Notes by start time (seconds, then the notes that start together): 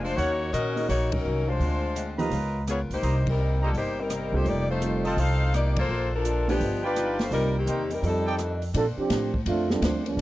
Already playing: F1
0.03 G#3 D4 F4 C5, open hi-hat
0.16 D#2 D#3 A#3 C#4 D#4 F#4 A#4 C#5 F#5, open hi-hat
0.52 A#2 D#3 A#3 C#4 F#4 A#4 D#5, closed hi-hat
0.76 A#3 D#4 G#4 C#5, open hi-hat
0.88 A#1 D#3 A#3 C#4 D#4 F#4 C#5, open hi-hat
1.12 F#3 C#4 D#4 A#4, kick, ride
1.25 C2 D#3 A#3 C#4 F#4
1.48 G#3 D4 F4 C5
1.59 D2 D3 G#3 C4 F4, open hi-hat
1.95 D3 G#3 C4 F4, closed hi-hat
2.18 F3 A#3 D#4 F4 G4 B4 D#5 A#5, open hi-hat
2.30 C#2 C#3 B3 F4 A#4, open hi-hat
2.67 C#3 B3 F4 G#4 A#4 C#5, cross-stick, closed hi-hat
2.90 C#2 A#3 D#4 G4 C5, open hi-hat
3.01 C2 C3 G3 A#3 D#4 G4 C5 D#5 A#5, open hi-hat
3.27 G3 C4 D#4 A#4, kick, ride
3.37 C3 G3 A#3 D#4
3.62 F3 A#3 D4 G4 A4 C5 D#5 A#5
3.73 G1 C3 G3 A#3 D#4, open hi-hat
3.77 A#3 D#4 G4 C5
4.00 G3 C4 D#4 A#4
4.09 C3 G3 A#3 D#4, cross-stick, closed hi-hat
4.32 C2 G3 A#3 C4 D#4 F4 G4 A4 C5
4.44 F1 F2 D#3 A3 C4, open hi-hat
4.48 A#3 D#4 G4 D5
4.71 A3 D#4 F4 C5
4.80 F2 D#3 G3 A3 C4 F4 A4, closed hi-hat
5.05 C4 F4 A4 C5 D#5 A5, open hi-hat
5.17 C2 F2 D#3 A3 C4 D#4 A4 C5 F5, open hi-hat
5.53 F2 D#3 A3 A#3 C4 D#4 G4 D5, cross-stick, closed hi-hat
5.76 A#3 F4 A4 C5, kick, ride
5.88 A#1 A#2 F3 A3 D4
6.15 F3 D4 A4 A#4
6.24 A#2 F3 A3 D4, closed hi-hat
6.48 F3 A3 B3 D4 G4 B4, open hi-hat
6.60 G1 G2 F3 B3 D#4, open hi-hat
6.83 G3 D4 F4 B4 D5 G5
6.96 G2 F3 B3 D#4, cross-stick, closed hi-hat
7.19 A3 D4 F4 C5, snare, open hi-hat
7.31 C2 C3 G3 A#3 C4 D#4 F4 A#4, open hi-hat
7.58 D#3 A#3 C4 G4
7.66 E2 C3 G3 A#3 D#4 A#4 C5 G5, closed hi-hat
7.91 G3 C4 D#4 A#4, open hi-hat
8.02 F2 D#3 G3 A3 C4 D4 F4 A4, open hi-hat
8.06 C4 D#4 A4
8.26 D#4 A4 D5 G5
8.37 F2 D#3 A3 D4, cross-stick, closed hi-hat
8.62 open hi-hat
8.73 A#2 F3 A#3 C4 D4 A4 C5, ride
8.97 F3 C4 D4 G4, muted upright bass stroke
9.09 A2 A#3 D4 A4 C5, snare, hi-hat pedal, ride
9.34 kick
9.46 F2 A3 A#3 C4 D4 F4 A4 C5, ride
9.69 F3 G3 A3 C4 D4 F4 A4, snare
9.81 D2 A#3 D4 A4 C5, snare, hi-hat pedal, ride
10.06 F3 G#3 B3 D4, ride
10.17 G1 G3